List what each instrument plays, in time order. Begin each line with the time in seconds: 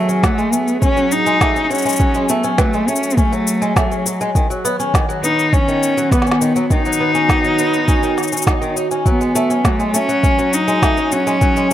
Already playing: cello F#3, ambient pad F#3 B3 G#4 B4
0.08 steel-string acoustic guitar C#4, shaker
0.23 steel-string acoustic guitar F#3, cello A3, kick, snare, shaker
0.38 steel-string acoustic guitar G#3, shaker
0.52 steel-string acoustic guitar A3, cello B3, shaker
0.57 ambient pad C#5
0.68 shaker
0.82 steel-string acoustic guitar C#4, cello C#4, kick, shaker
0.97 steel-string acoustic guitar F#3, shaker
1.12 cello D#4, shaker
1.26 steel-string acoustic guitar G#3, shaker
1.41 steel-string acoustic guitar A3, kick, snare, shaker
1.56 steel-string acoustic guitar C#4, shaker
1.64 cello D#4
1.70 steel-string acoustic guitar F#3, cello C#4, shaker
1.75 shaker
1.78 shaker
1.82 steel-string acoustic guitar G#3, shaker
1.86 shaker
1.89 shaker
1.92 shaker
1.96 shaker
2.00 steel-string acoustic guitar F#3, kick, shaker
2.14 steel-string acoustic guitar G#3, shaker
2.29 steel-string acoustic guitar A3, cello B3, shaker
2.44 steel-string acoustic guitar C#4, shaker
2.58 steel-string acoustic guitar F#3, cello A3, kick, snare, shaker
2.73 steel-string acoustic guitar G#3, shaker
2.88 steel-string acoustic guitar A3, cello C#4, shaker
2.96 shaker
3.03 shaker
3.10 shaker
3.17 cello A3, steel-string acoustic guitar C#4, kick, shaker
3.32 steel-string acoustic guitar F#3, shaker
3.47 shaker
3.62 steel-string acoustic guitar G#3, shaker
3.76 cello F#3, steel-string acoustic guitar A3, kick, snare, shaker
3.91 steel-string acoustic guitar C#4, shaker
4.06 steel-string acoustic guitar F#3, shaker
4.21 steel-string acoustic guitar G#3, shaker
4.35 ambient pad D#3, steel-string acoustic guitar D#3, kick, shaker
4.50 steel-string acoustic guitar F#3, shaker
4.65 steel-string acoustic guitar B3, shaker
4.80 steel-string acoustic guitar C#4, shaker
4.94 steel-string acoustic guitar D#3, kick, snare, shaker
5.05 steel-string acoustic guitar F#3, ambient pad B3
5.10 shaker
5.23 steel-string acoustic guitar B3, cello D#4, shaker
5.39 shaker
5.46 ambient pad F#4
5.53 steel-string acoustic guitar C#4, cello C#4, kick, shaker
5.68 steel-string acoustic guitar D#3, shaker
5.83 shaker
5.97 steel-string acoustic guitar F#3, shaker
6.12 cello B3, steel-string acoustic guitar B3, kick, snare, shaker
6.22 snare
6.27 steel-string acoustic guitar C#4, shaker
6.32 snare
6.41 steel-string acoustic guitar D#3, shaker
6.56 steel-string acoustic guitar F#3, shaker
6.70 steel-string acoustic guitar D#3, cello D#4, kick, shaker
6.85 steel-string acoustic guitar F#3, shaker
6.93 shaker
7.00 steel-string acoustic guitar B3
7.15 steel-string acoustic guitar C#4, shaker
7.29 steel-string acoustic guitar D#3, kick, snare, shaker
7.44 steel-string acoustic guitar F#3, shaker
7.59 steel-string acoustic guitar B3, shaker
7.74 shaker
7.88 steel-string acoustic guitar C#4, kick, shaker
8.03 steel-string acoustic guitar D#3, shaker
8.18 snare, shaker
8.23 shaker
8.28 shaker
8.32 steel-string acoustic guitar C#4, shaker
8.37 shaker
8.42 shaker
8.47 steel-string acoustic guitar D#4, kick, snare, shaker
8.62 steel-string acoustic guitar D#3, shaker
8.76 steel-string acoustic guitar D#4, shaker
8.91 steel-string acoustic guitar C#4, shaker
9.06 steel-string acoustic guitar F#3, ambient pad F#3, cello B3, kick, shaker
9.21 steel-string acoustic guitar G#3, shaker
9.35 steel-string acoustic guitar A3, shaker
9.50 steel-string acoustic guitar C#4, shaker
9.65 steel-string acoustic guitar F#3, cello A3, kick, snare, shaker
9.80 steel-string acoustic guitar G#3, shaker
9.94 steel-string acoustic guitar A3, cello C#4, shaker
10.09 steel-string acoustic guitar F#3, shaker
10.23 steel-string acoustic guitar C#4, kick, shaker
10.39 steel-string acoustic guitar F#3, shaker
10.47 ambient pad G#4
10.53 cello D#4, shaker
10.68 steel-string acoustic guitar G#3, shaker
10.82 steel-string acoustic guitar A3, kick, snare, shaker
10.97 steel-string acoustic guitar C#4, shaker
11.12 steel-string acoustic guitar F#3, cello C#4, shaker
11.27 steel-string acoustic guitar G#3, shaker
11.41 steel-string acoustic guitar F#3, kick, shaker
11.56 steel-string acoustic guitar G#3, shaker